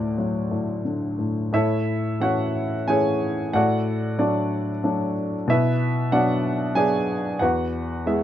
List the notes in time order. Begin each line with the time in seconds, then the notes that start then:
Already playing: D2 A2 F#4 D5
0.18 F#3
0.51 A2
0.85 D3
1.19 A2
1.53 A2 E4 A4 C#5 E5
2.20 E3 A3 C#4 F#4 C#5 F#5
2.88 E3 A3 C#4 G#4 C#5 G#5
3.53 A2 F#4 A4 D5 F#5
4.19 F#3 A3 D4 F#4 D5
4.84 F#3 A3 D4
5.48 B2 E4 B4 E5
6.12 F#3 B3 D4 F#4 D5 F#5
6.75 F#3 B3 D4 G#4 D5 G#5
7.39 E2 F#4 B4 F#5
8.06 G#3 B3 E4 G#4 E5